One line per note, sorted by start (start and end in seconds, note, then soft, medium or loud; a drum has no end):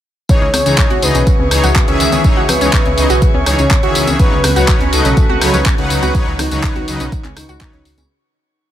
0.29 8.06 C#3 medium
0.29 0.44 E3 loud
0.29 8.06 C#4 medium
0.29 0.44 D#4 medium
0.29 0.44 G#4 medium
0.29 4.16 G#4 medium
0.29 1.04 C#5 loud
0.29 0.44 C#5 loud
0.29 4.16 E5 medium
0.29 8.11 C#6 medium
0.29 kick loud
0.29 closed hi-hat medium
0.29 tambourine soft
0.42 0.49 C#2 medium
0.42 0.46 C#4 medium
0.42 0.46 C#5 medium
0.54 0.61 C#2 loud
0.54 cross-stick medium
0.54 open hi-hat loud
0.54 tambourine medium
0.54 high conga loud
0.66 0.73 C#2 medium
0.66 0.71 C#3 medium
0.66 0.89 E3 medium
0.66 0.71 C#4 medium
0.66 0.89 D#4 medium
0.66 0.89 G#4 medium
0.66 0.89 C#5 loud
0.66 closed hi-hat medium
0.66 tambourine soft
0.78 kick loud
0.78 clap loud
0.78 closed hi-hat medium
0.78 tambourine soft
0.90 0.98 C#2 medium
0.90 0.98 F#4 loud
0.90 0.98 F#5 medium
0.90 closed hi-hat soft
0.90 high conga medium
1.02 1.10 C#2 loud
1.02 1.17 E3 medium
1.02 1.17 D#4 medium
1.02 1.17 G#4 medium
1.02 1.66 B4 loud
1.02 1.17 D#5 medium
1.02 open hi-hat loud
1.02 tambourine medium
1.15 1.22 B1 medium
1.15 1.20 C#4 medium
1.15 1.20 C#5 medium
1.15 closed hi-hat medium
1.15 tambourine soft
1.27 kick loud
1.27 closed hi-hat medium
1.27 tambourine soft
1.39 1.47 C#2 medium
1.39 1.44 C#3 medium
1.39 1.44 C#4 medium
1.39 high conga loud
1.51 1.59 C#2 medium
1.51 1.66 E3 medium
1.51 1.66 D#4 medium
1.51 1.66 G#4 medium
1.51 1.66 C#5 loud
1.51 cross-stick medium
1.51 open hi-hat loud
1.51 tambourine medium
1.64 1.71 C#2 medium
1.64 1.71 F#4 loud
1.64 1.71 F#5 medium
1.64 closed hi-hat medium
1.64 tambourine soft
1.64 low conga medium
1.76 kick loud
1.76 clap loud
1.76 closed hi-hat medium
1.76 tambourine soft
1.76 high conga medium
1.88 1.95 C#2 medium
1.88 2.22 D#3 medium
1.88 2.22 E3 medium
1.88 1.93 C#4 medium
1.88 2.21 G#4 medium
1.88 1.93 C#5 medium
1.88 2.22 E5 loud
1.88 closed hi-hat soft
2.00 2.08 C#2 loud
2.00 open hi-hat loud
2.00 tambourine medium
2.12 2.20 C#2 medium
2.12 2.17 C#3 medium
2.12 2.17 C#4 medium
2.12 closed hi-hat medium
2.12 tambourine soft
2.12 high conga loud
2.24 2.39 E3 loud
2.24 2.39 D#4 medium
2.24 2.39 G#4 medium
2.24 2.39 C#5 loud
2.24 kick loud
2.24 closed hi-hat medium
2.24 tambourine soft
2.37 2.44 C#2 medium
2.37 2.44 F#4 loud
2.37 2.44 F#5 medium
2.49 2.56 C#2 loud
2.49 3.37 B4 loud
2.49 cross-stick medium
2.49 open hi-hat loud
2.49 tambourine medium
2.49 high conga loud
2.49 low conga medium
2.61 2.69 C#2 loud
2.61 2.84 E3 medium
2.61 2.66 C#4 medium
2.61 2.84 D#4 medium
2.61 2.84 G#4 medium
2.61 2.84 C#5 loud
2.61 2.66 C#5 medium
2.61 closed hi-hat medium
2.61 tambourine soft
2.73 kick loud
2.73 clap loud
2.73 closed hi-hat medium
2.73 tambourine soft
2.85 2.93 C#2 medium
2.85 2.90 C#3 medium
2.85 2.90 C#4 medium
2.85 closed hi-hat soft
2.85 high conga medium
2.98 3.05 C#2 loud
2.98 3.12 E3 medium
2.98 3.12 D#4 medium
2.98 3.12 G#4 medium
2.98 3.12 D#5 medium
2.98 open hi-hat loud
2.98 tambourine medium
3.10 3.17 B1 medium
3.10 3.17 F#4 loud
3.10 3.17 F#5 medium
3.10 closed hi-hat medium
3.10 tambourine soft
3.22 kick loud
3.22 closed hi-hat medium
3.22 tambourine soft
3.34 3.42 C#2 medium
3.34 3.39 C#4 medium
3.34 3.39 C#5 medium
3.34 high conga loud
3.46 3.54 C#2 loud
3.46 3.61 E3 medium
3.46 3.61 D#4 medium
3.46 3.61 G#4 medium
3.46 3.61 C#5 loud
3.46 4.10 C#5 loud
3.46 cross-stick medium
3.46 open hi-hat loud
3.46 tambourine medium
3.59 3.66 C#2 loud
3.59 3.63 C#3 medium
3.59 3.63 C#4 medium
3.59 closed hi-hat medium
3.59 tambourine soft
3.71 kick loud
3.71 clap loud
3.71 closed hi-hat medium
3.71 tambourine soft
3.71 high conga medium
3.83 3.90 C#2 medium
3.83 4.17 D#3 medium
3.83 4.17 E3 medium
3.83 3.90 F#4 loud
3.83 4.17 G#4 medium
3.83 4.17 E5 loud
3.83 3.90 F#5 medium
3.83 closed hi-hat soft
3.95 4.03 C#2 loud
3.95 open hi-hat loud
3.95 tambourine medium
4.07 4.15 C#2 medium
4.07 4.12 C#4 medium
4.07 4.12 C#5 medium
4.07 closed hi-hat medium
4.07 tambourine soft
4.07 high conga loud
4.20 4.34 C#3 loud
4.20 4.34 F#3 medium
4.20 4.34 D#4 medium
4.20 8.06 F#4 medium
4.20 8.06 B4 medium
4.20 4.34 B4 medium
4.20 4.83 B4 loud
4.20 4.34 C#5 loud
4.20 kick loud
4.20 closed hi-hat medium
4.20 tambourine soft
4.32 4.39 C#2 medium
4.32 4.37 C#3 medium
4.32 4.37 C#4 medium
4.44 4.51 C#2 loud
4.44 cross-stick medium
4.44 open hi-hat loud
4.44 tambourine medium
4.44 high conga loud
4.56 4.64 C#2 loud
4.56 4.79 C#3 medium
4.56 4.79 F#3 medium
4.56 4.79 D#4 medium
4.56 4.63 F#4 loud
4.56 4.79 B4 medium
4.56 4.79 C#5 loud
4.56 4.63 F#5 medium
4.56 closed hi-hat medium
4.56 tambourine soft
4.68 kick loud
4.68 clap loud
4.68 closed hi-hat medium
4.68 tambourine soft
4.81 4.88 C#2 medium
4.81 4.85 C#4 medium
4.81 4.85 C#5 medium
4.81 closed hi-hat soft
4.81 high conga medium
4.93 5.00 C#2 loud
4.93 5.07 C#3 medium
4.93 5.07 F#3 medium
4.93 5.07 D#4 medium
4.93 5.56 A4 loud
4.93 5.07 B4 medium
4.93 5.07 D#5 medium
4.93 open hi-hat loud
4.93 tambourine medium
5.05 5.12 B1 medium
5.05 5.10 C#3 medium
5.05 5.10 C#4 medium
5.05 closed hi-hat medium
5.05 tambourine soft
5.17 kick loud
5.17 closed hi-hat medium
5.17 tambourine soft
5.29 5.37 C#2 medium
5.29 5.37 F#4 loud
5.29 5.37 F#5 medium
5.29 high conga loud
5.41 5.49 C#2 loud
5.41 5.56 C#3 medium
5.41 5.56 F#3 medium
5.41 5.56 D#4 medium
5.41 5.56 B4 medium
5.41 5.56 C#5 loud
5.41 cross-stick medium
5.41 open hi-hat loud
5.41 tambourine medium
5.54 5.61 C#2 loud
5.54 5.59 C#4 medium
5.54 5.59 C#5 medium
5.54 closed hi-hat soft
5.54 tambourine soft
5.54 low conga medium
5.66 kick loud
5.66 clap loud
5.66 closed hi-hat medium
5.66 tambourine soft
5.66 high conga medium
5.78 5.86 C#2 medium
5.78 6.12 C#3 medium
5.78 5.83 C#3 medium
5.78 6.12 F#3 medium
5.78 5.83 C#4 medium
5.78 6.12 D#4 medium
5.78 6.12 B4 medium
5.78 6.12 F#5 loud
5.78 closed hi-hat soft
5.90 5.98 C#2 loud
5.90 open hi-hat loud
5.90 tambourine medium
6.02 6.10 C#2 medium
6.02 6.10 F#4 loud
6.02 6.10 F#5 medium
6.02 closed hi-hat medium
6.02 tambourine soft
6.02 high conga loud
6.15 6.29 C#3 loud
6.15 6.29 F#3 medium
6.15 6.29 D#4 medium
6.15 6.29 B4 medium
6.15 6.29 C#5 loud
6.15 kick loud
6.15 closed hi-hat medium
6.15 tambourine soft
6.27 6.34 C#2 medium
6.27 6.32 C#4 medium
6.27 6.32 C#5 medium
6.39 6.47 C#2 loud
6.39 7.27 D#4 loud
6.39 cross-stick medium
6.39 open hi-hat loud
6.39 tambourine medium
6.39 high conga medium
6.39 low conga medium
6.51 6.59 C#2 loud
6.51 6.74 C#3 medium
6.51 6.56 C#3 medium
6.51 6.74 F#3 medium
6.51 6.56 C#4 medium
6.51 6.74 D#4 medium
6.51 6.74 B4 medium
6.51 6.74 C#5 loud
6.51 closed hi-hat medium
6.51 tambourine soft
6.63 kick loud
6.63 clap loud
6.63 closed hi-hat medium
6.63 tambourine soft
6.76 6.83 C#2 medium
6.76 6.83 F#4 loud
6.76 6.83 F#5 medium
6.76 closed hi-hat soft
6.76 high conga medium
6.88 6.95 C#2 loud
6.88 7.02 C#3 medium
6.88 7.02 F#3 medium
6.88 7.02 D#4 medium
6.88 7.02 B4 medium
6.88 7.02 D#5 medium
6.88 open hi-hat loud
6.88 tambourine medium
7.00 7.08 B1 medium
7.00 7.05 C#4 medium
7.00 7.05 C#5 medium
7.00 closed hi-hat medium
7.00 tambourine soft
7.12 kick loud
7.12 closed hi-hat medium
7.12 tambourine soft
7.24 7.32 C#2 medium
7.24 7.29 C#3 medium
7.24 7.29 C#4 medium
7.24 clap soft
7.24 closed hi-hat soft
7.24 high conga medium
7.37 7.44 C#2 loud
7.37 8.00 D#4 loud
7.37 cross-stick medium
7.37 open hi-hat loud
7.37 tambourine medium
7.49 7.56 C#2 medium
7.49 7.56 F#4 loud
7.49 7.56 F#5 medium
7.49 closed hi-hat soft
7.49 tambourine soft
7.61 7.75 C#3 medium
7.61 7.75 F#3 medium
7.61 7.75 D#4 medium
7.61 7.75 B4 medium
7.61 7.75 C#5 loud
7.61 kick loud
7.61 clap loud
7.61 closed hi-hat medium
7.61 tambourine soft
7.61 high conga medium
7.73 7.81 C#2 medium
7.73 7.78 C#4 medium
7.73 7.78 C#5 medium
7.73 closed hi-hat soft
7.85 7.93 C#2 loud
7.85 open hi-hat loud
7.85 tambourine medium
7.98 8.05 C#2 medium
7.98 8.02 C#3 medium
7.98 8.02 C#4 medium
7.98 closed hi-hat medium
7.98 tambourine soft
7.98 high conga medium